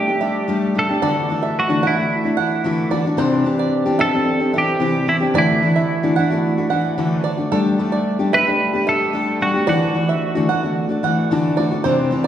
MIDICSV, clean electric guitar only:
0, 0, Header, 1, 2, 480
1, 0, Start_track
1, 0, Tempo, 541028
1, 908, Time_signature, 4, 2, 24, 8
1, 10888, End_track
2, 0, Start_track
2, 0, Title_t, "Clean electric guitar"
2, 0, Program_c, 0, 27
2, 0, Note_on_c, 0, 67, 89
2, 698, Note_off_c, 0, 67, 0
2, 701, Note_on_c, 0, 69, 104
2, 1411, Note_off_c, 0, 69, 0
2, 1415, Note_on_c, 0, 66, 81
2, 1648, Note_off_c, 0, 66, 0
2, 1660, Note_on_c, 0, 64, 76
2, 2568, Note_off_c, 0, 64, 0
2, 3558, Note_on_c, 0, 69, 115
2, 4046, Note_off_c, 0, 69, 0
2, 4066, Note_on_c, 0, 67, 99
2, 4512, Note_off_c, 0, 67, 0
2, 4515, Note_on_c, 0, 64, 88
2, 4579, Note_off_c, 0, 64, 0
2, 4777, Note_on_c, 0, 64, 86
2, 6405, Note_off_c, 0, 64, 0
2, 7402, Note_on_c, 0, 71, 113
2, 7882, Note_off_c, 0, 71, 0
2, 7886, Note_on_c, 0, 69, 102
2, 8322, Note_off_c, 0, 69, 0
2, 8361, Note_on_c, 0, 66, 93
2, 8588, Note_off_c, 0, 66, 0
2, 8598, Note_on_c, 0, 66, 84
2, 10236, Note_off_c, 0, 66, 0
2, 10888, End_track
0, 0, End_of_file